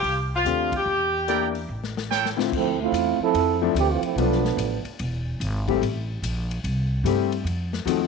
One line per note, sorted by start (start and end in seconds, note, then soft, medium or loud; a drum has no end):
0.00 0.42 C2 medium
0.00 0.16 G4 loud
0.04 open hi-hat soft
0.35 0.71 F4 medium
0.45 0.83 D#2 medium
0.45 0.69 A3 medium
0.45 0.69 C4 soft
0.45 0.69 D4 soft
0.45 0.70 G4 medium
0.45 closed hi-hat medium
0.72 kick medium
0.72 ride medium
0.77 1.57 G4 medium
0.86 1.65 E2 medium
1.28 1.52 A#3 medium
1.28 1.52 D4 medium
1.28 1.52 E4 medium
1.28 1.46 E4 medium
1.28 1.52 G4 medium
1.28 1.46 A#4 medium
1.28 1.46 D5 medium
1.28 1.46 G5 medium
1.28 closed hi-hat medium
1.55 open hi-hat soft
1.69 2.47 A1 medium
1.84 snare soft
1.97 snare medium
2.11 2.29 E4 medium
2.11 2.29 A4 medium
2.11 2.29 C#5 medium
2.11 2.29 G5 medium
2.11 snare medium
2.26 snare medium
2.37 2.50 D3 medium
2.37 2.50 A3 medium
2.37 2.50 C4 medium
2.37 2.50 E4 medium
2.37 2.50 F4 medium
2.37 snare medium
2.52 2.92 D2 medium
2.52 2.78 F3 medium
2.52 2.78 A3 medium
2.52 2.78 C4 medium
2.52 2.78 E4 medium
2.52 kick medium
2.52 crash medium
2.81 3.18 A3 medium
2.81 3.19 C4 medium
2.81 3.18 E4 medium
2.81 3.18 F4 medium
2.92 3.17 E2 medium
2.92 hi-hat pedal medium
2.92 ride medium
3.19 3.59 F3 medium
3.19 3.59 C4 medium
3.19 3.59 E4 medium
3.19 3.59 A4 loud
3.19 muted upright bass stroke soft
3.34 3.74 F2 medium
3.34 ride medium
3.61 3.74 F3 medium
3.61 3.74 A3 medium
3.61 3.74 C4 medium
3.61 3.75 D4 medium
3.61 3.75 E4 medium
3.75 4.00 D2 medium
3.75 3.89 E3 medium
3.75 3.89 A3 medium
3.75 3.89 C4 medium
3.75 3.89 G4 medium
3.75 hi-hat pedal medium
3.75 ride medium
3.91 4.04 E3 medium
3.91 4.02 A3 medium
3.91 4.02 C4 medium
3.91 4.04 F4 medium
4.02 4.14 F3 medium
4.02 4.15 A3 medium
4.02 4.17 C4 medium
4.02 4.17 E4 medium
4.02 muted upright bass stroke soft
4.02 ride soft
4.16 4.56 B1 medium
4.16 4.84 F3 medium
4.16 4.41 F3 medium
4.16 4.84 A3 medium
4.16 4.41 A3 medium
4.16 4.84 B3 medium
4.16 4.41 B3 medium
4.16 4.84 D4 medium
4.16 4.41 D4 medium
4.16 4.42 F4 medium
4.16 ride medium
4.32 snare soft
4.45 snare soft
4.57 4.82 A1 medium
4.57 hi-hat pedal medium
4.57 ride medium
4.85 muted upright bass stroke soft
4.85 ride soft
4.99 5.39 E1 medium
4.99 ride medium
5.40 5.80 G#1 medium
5.40 hi-hat pedal medium
5.40 ride medium
5.68 5.80 G3 medium
5.68 5.81 A3 medium
5.68 5.81 C4 medium
5.68 5.81 E4 medium
5.68 5.81 G4 medium
5.68 kick medium
5.68 ride soft
5.82 6.21 A1 medium
5.82 ride medium
6.22 6.62 A#1 medium
6.22 hi-hat pedal medium
6.22 ride medium
6.51 ride soft
6.64 7.03 C2 medium
6.64 ride medium
7.04 7.44 G2 medium
7.04 7.29 G3 medium
7.04 7.29 A3 medium
7.04 7.29 C4 medium
7.04 7.29 E4 medium
7.04 7.30 G4 medium
7.04 hi-hat pedal medium
7.04 ride medium
7.32 ride soft
7.44 7.85 F2 medium
7.44 ride medium
7.73 snare medium
7.85 8.07 D#2 medium
7.85 8.07 F3 medium
7.85 8.07 A3 medium
7.85 8.07 C4 medium
7.85 8.07 D#4 medium
7.85 8.07 F#4 medium
7.85 hi-hat pedal medium
7.85 ride medium